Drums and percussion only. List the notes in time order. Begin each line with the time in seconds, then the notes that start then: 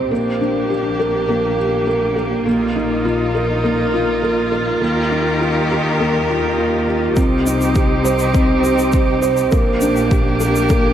7.17 kick, shaker
7.47 shaker
7.61 shaker
7.75 kick, shaker
8.05 shaker
8.19 shaker
8.34 kick, shaker
8.64 shaker
8.79 shaker
8.92 kick, shaker
9.22 shaker
9.37 shaker
9.52 kick, shaker
9.81 shaker
9.96 shaker
10.11 kick, shaker
10.40 shaker
10.56 shaker
10.69 kick, shaker